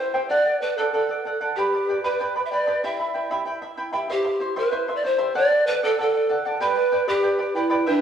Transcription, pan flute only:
0.00 C5
0.29 D5
0.61 B4
0.78 A4
0.93 A4
1.56 G4
2.04 B4
2.45 E5
2.52 D5
2.84 E5
4.12 G4
4.58 B4
4.96 D5
5.05 C5
5.36 D5
5.67 B4
5.84 A4
6.01 A4
6.62 B4
7.08 G4
7.55 E4
7.88 D4

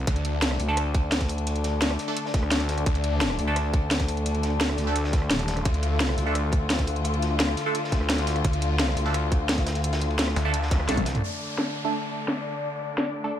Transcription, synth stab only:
0.68 A3 D4 A4
2.08 A3 D4 A4
3.47 A3 D4 A4
4.87 A3 D4 A4
6.26 A3 D4 A4
7.66 A3 D4 A4
9.06 A3 D4 A4
10.45 A3 D4 A4
10.89 A3 D4 A4
11.85 A3 D4 A4
13.24 A3 D4 A4

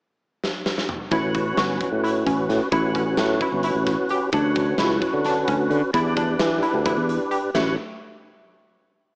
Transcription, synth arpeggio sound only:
1.12 E4
1.58 F#4
2.03 E4
2.26 C#4
2.73 E4
2.95 C#4
3.42 E4
3.64 E4
4.10 G4
4.34 D4
4.79 E4
5.25 D4
5.49 C#4
5.94 E4
6.18 D4
6.63 E4
6.86 E4
7.31 G4
7.55 A3

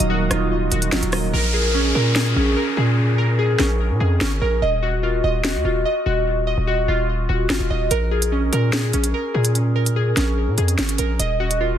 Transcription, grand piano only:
Already playing: D#3 F#3 A#3 D#4 F4
0.10 A#3
0.31 D#4
0.51 F4
0.72 D#3
0.92 F#3
1.13 A#3

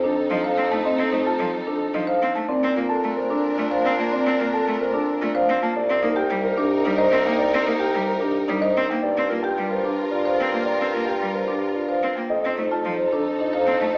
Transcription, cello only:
0.30 F3
0.57 C4
0.71 A3
0.98 C4
1.12 A3
1.39 F3
1.94 F3
2.22 C4
2.35 A3
2.63 C4
2.76 A#3
3.04 A3
3.58 A3
3.85 C4
3.99 A#3
4.26 C4
4.40 A#3
4.68 A3
5.22 A3
5.49 C4
5.62 A#3
5.89 C4
6.02 A#3
6.30 G3
6.85 G3
7.12 C4
7.26 A#3
7.54 C4
7.67 A#3
7.95 G3
8.49 G3
8.77 C4
8.91 A#3
9.17 C4
9.31 A#3
9.58 G3
10.40 C4
10.54 A#3
10.81 C4
10.95 A#3
11.22 G3
12.03 C4
12.17 A#3
12.45 C4
12.57 A3
12.85 F3
13.67 C4
13.81 A3

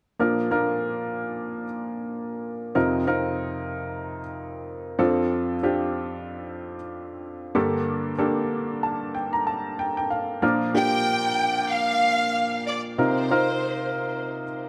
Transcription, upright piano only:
0.19 A#2 F3 A#3 D4 F4 A#4
0.51 A#3 D4 F4 A#4
2.75 F2 C3 C4 D#4 F4 A#4
3.07 C4 D#4 F4 A#4
4.99 F2 F3 C4 D4 F4 A4
5.63 C4 D4 F4 G4
7.55 G2 D3 A#3 D4 G4 A4
8.19 A#3 D4 G4 A4
8.83 A5
9.15 G5
9.33 A#5
9.47 A5
9.79 G5
9.97 G5
10.11 F5
10.42 A#2 F3 A#3 D4 F4 A#4
10.74 A#3 D4 F4 G4
12.98 C3 C4 D#4 F4 A#4
13.31 C4 D#4 F4 A#4

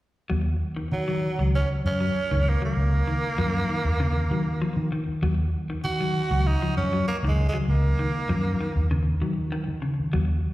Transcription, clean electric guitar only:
0.30 F#3
0.76 D#3
1.08 F#3
1.39 F#3
2.01 F#3
2.31 D#3
2.62 F#3
3.08 D#3
3.38 F3
3.69 D#3
4.00 C#3
4.31 F#3
4.62 F3
4.92 D#3
5.23 F#3
5.70 D#3
6.00 F#3
6.31 F#3
6.62 F3
6.93 F#3
7.25 D#3
7.53 F#3
7.99 D#3
8.29 F3
8.61 D#3
8.91 C#3
9.22 F#3
9.52 D#3
9.82 C#3
10.13 F#3

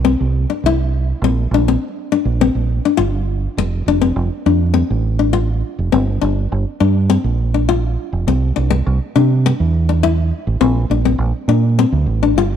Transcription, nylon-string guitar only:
0.05 C4
0.50 D4
0.66 E4
1.24 C4
1.54 D4
1.68 C4
2.12 D4
2.41 C4
2.85 D4
2.97 F4
3.58 muted nylon-string guitar stroke
3.88 D4
4.02 C4
4.46 D4
4.74 C4
5.19 D4
5.33 F4
5.92 C4
6.21 D4
6.80 D4
7.10 C4
7.54 D4
7.69 F4
8.28 C4
8.56 D4
8.70 muted nylon-string guitar stroke
9.16 D4
9.46 muted nylon-string guitar stroke
9.89 D4
10.03 E4
10.61 C4
10.91 D4
11.05 C4
11.49 D4
11.79 C4
12.23 D4
12.38 F4

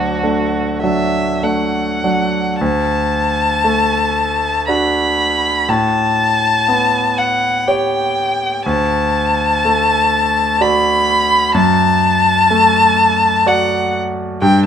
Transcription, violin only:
Already playing: F#4
0.83 E5
1.43 F#5
2.61 A5
4.68 B5
5.69 A5
7.18 F#5
7.68 G5
8.66 A5
10.62 B5
11.55 A5
13.48 F#5
14.42 G5

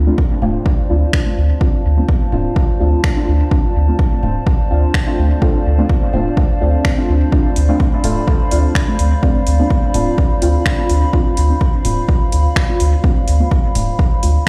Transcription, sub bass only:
0.42 D1
0.90 D2
1.37 D2
1.85 D2
2.32 D1
2.80 D2
3.28 D2
3.75 D2
4.23 D1
4.70 D2
5.18 D2
5.66 D2
6.13 D1
6.61 D2
7.09 D2
7.56 D2
8.04 D1
8.51 D2
8.99 D2
9.47 D2
9.94 D1
10.42 D2
10.89 D2
11.37 D2
11.85 D1
12.32 D2
12.80 D2
13.28 D2
13.75 D1
14.23 D2

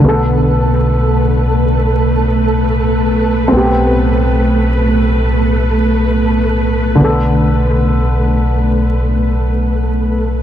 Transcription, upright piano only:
0.00 D3 B3
0.08 A4
3.48 C4
3.52 B3
3.57 G4
6.95 D3
7.00 B3
7.04 A4

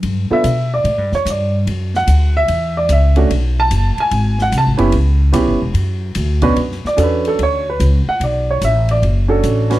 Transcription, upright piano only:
0.31 B3 D4 F4 A4 E5
0.74 D5
1.15 C#5
1.30 D5
1.96 F#5
2.37 E5
2.77 D5
2.92 E5
3.16 A3 C#4 D4 F#4
3.60 A5
4.00 G#5
4.42 F#5
4.58 A5
4.77 B3 C#4 E4 G4
5.32 B3 C#4 E4 G4
6.42 B2 C#4 D4 F#4 B4
6.87 D5
6.97 C#4 D4 F#4 A4
7.03 B4
7.28 A4
7.43 C#5
7.70 B4
8.09 F#5
8.24 D5
8.51 C#5
8.65 E5
8.91 D5
9.28 C#4 D4 F#4 A4
9.70 C#4 D4 F#4 B4

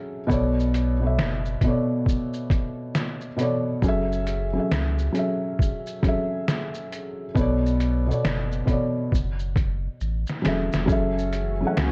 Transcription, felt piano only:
Already playing: F#3 C#4 G#4 A4 E5
0.27 B2 B3 A4
0.31 C#5 D5
1.00 B2 B3 A4
1.05 C#5 E5
1.63 B2 B3 A4
1.68 C#5 D5
3.37 B2 B3 A4
3.41 C#5 D5
3.82 F#3 C#4 G#4
3.87 A4 E5
4.53 F#3 C#4 G#4
4.58 A4 E5
5.13 F#3 C#4 G#4
5.17 A4 E5
6.02 F#3 C#4 G#4
6.07 A4 E5
7.35 B2 B3 A4
7.39 C#5 D5
8.07 B2 B3 A4
8.11 C#5 D5
8.66 B2 B3 A4
8.70 C#5 D5
10.42 F#3 C#4 G#4
10.47 A4 E5
10.86 F#3 C#4 G#4
10.90 A4 E5
11.61 F#3 C#4 G#4
11.65 A4 F#5

